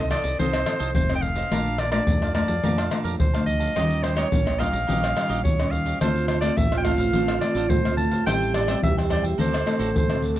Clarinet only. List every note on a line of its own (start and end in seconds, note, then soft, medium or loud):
0.11 0.37 D5 medium
0.39 0.91 C5 medium
0.95 1.15 C5 medium
1.15 1.23 G5 medium
1.22 1.81 F5 medium
1.79 1.91 D5 medium
1.92 2.32 D5 medium
2.34 2.89 D5 medium
3.20 3.45 C5 medium
3.46 4.04 D#5 medium
4.03 4.17 C5 medium
4.16 4.61 C#5 medium
4.59 5.43 F5 medium
5.44 5.72 C#5 medium
5.71 6.00 F5 medium
6.01 6.27 C5 medium
6.28 6.40 C5 medium
6.41 6.58 D5 medium
6.57 6.77 E5 medium
6.77 6.86 G5 medium
6.84 7.40 F5 medium
7.41 7.71 D5 medium
7.69 7.96 C5 medium
7.97 8.24 A5 medium
8.26 8.53 G5 medium
8.55 8.81 D5 medium
8.83 8.96 E5 medium
9.12 9.24 D5 medium
9.41 9.93 C5 medium
9.98 10.23 C5 medium